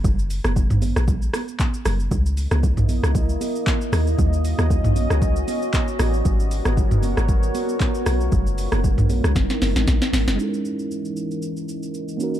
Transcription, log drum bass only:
X:1
M:4/4
L:1/16
Q:"Swing 16ths" 1/4=116
K:C#dor
V:1 name="Log drum bass" clef=bass
F,,,3 F,,,2 G,,,2 A,,,3 z4 F,,,2 | C,,3 C,,2 A,,,2 C,,3 z4 D,,2 | D,,3 D,,2 A,,,2 C,,3 z4 =A,,,2 | G,,,3 G,,,2 F,,,2 G,,,3 z4 B,,,2 |
F,,,3 F,,,2 A,,,2 C,, F,,, z F,,, G,,, A,,, z G,,, F,,, | z16 |]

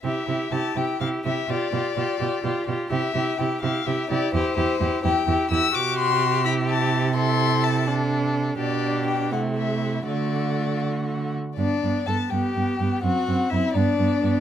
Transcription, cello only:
X:1
M:6/8
L:1/8
Q:3/8=84
K:C
V:1 name="Cello" clef=bass
C, C, C, C, C, C, | B,, B,, B,, B,, B,, B,, | C, C, C, C, C, C, | E,, E,, E,, E,, E,, E,, |
[K:G] C,6- | C,6 | B,,3 C,3 | D,4- D, z |
G,, G,, G,, G,, G,, G,, | F,, F,, F,, G,, G,, G,, |]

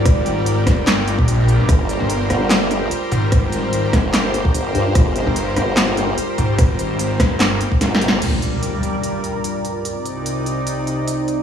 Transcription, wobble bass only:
X:1
M:4/4
L:1/8
Q:"Swing 16ths" 1/4=147
K:Gphr
V:1 name="Wobble bass" clef=bass
z8 | G,,, z2 G,,,3 z2 | z3 G,,,3 G,,, G,, | G,,, z2 G,,,3 z2 |
z6 G,,,2 | z8 | z8 |]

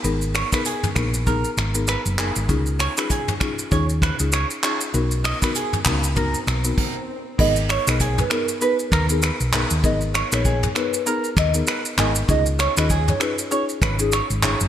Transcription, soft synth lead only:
X:1
M:4/4
L:1/16
Q:"Swing 16ths" 1/4=98
K:G#dor
V:1 name="Soft synth lead"
z16 | z16 | z16 | d z c d z B A z B z2 G z4 |
d z2 c2 z B2 z2 d z3 d z | d z c d z c B z c z2 G z4 |]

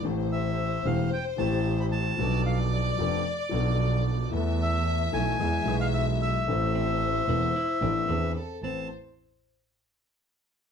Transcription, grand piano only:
X:1
M:4/4
L:1/8
Q:1/4=112
K:Am
V:1 name="Grand piano"
[A,,,A,,E,A,CG]3 [E,,,E,,E,A,CG] z [A,,,A,,E,A,CG]3 | [B,,,B,,F,B,DA]3 [F,,,F,,F,B,DA] z [B,,,B,,F,B,DA]3 | [E,,E,A,B,A]3 [B,,,B,,E,A,B,A] [E,,E,^G,B,^G] [B,,,B,,E,G,B,G]3 | [A,,,A,,E,A,CA]3 [E,,,E,,E,B,CA] z [A,,,A,,E,B,CA] [E,,E,B,D^G] z |
[A,,,CAB] z6 z |]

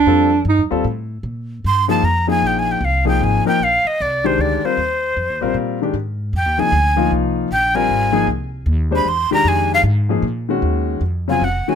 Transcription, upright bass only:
X:1
M:3/4
L:1/8
Q:"Swing" 1/4=153
K:Fphr
V:1 name="Upright bass" clef=bass
F,,2 (3=G,, F,, E,, =A,,2 | [K:Bbmix] B,,2 G,,2 F,,2 | B,,,2 C,,2 A,,, z | B,,, z C,,2 D,, z |
E,,2 (3F,, E,, B,,, B,,2 | A,,2 (3F,, E,, C,, D,,2 | C,,2 B,,,2 A,,,2 | C,,2 E,,2 =E,, z |
F,,2 A,,2 B,,2 | [K:Abmix] E,,2 F,,2 F,,, z |]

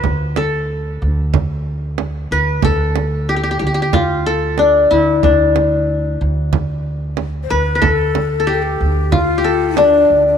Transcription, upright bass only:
X:1
M:4/4
L:1/8
Q:1/4=92
K:none
V:1 name="Upright bass" clef=bass
D,,3 D,,4 D,, | D,,3 D,,4 D,, | D,,3 D,,4 D,, | D,,3 D,,4 D,, |]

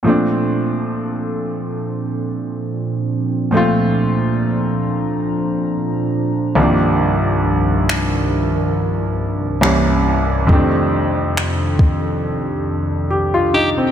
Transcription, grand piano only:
X:1
M:4/4
L:1/16
Q:"Swing 16ths" 1/4=69
K:Bb
V:1 name="Grand piano"
z16 | z16 | z16 | z12 G F E C |]
V:2 name="Grand piano" clef=bass
[B,,F,A,CD]16 | [B,,F,A,CF]12- [B,,F,A,CF]2 [C,,E,F,G,B,D]2- | [C,,E,F,G,B,D]12 [C,,=E,G,B,_D]4 | [F,,E,G,A,CD]16 |]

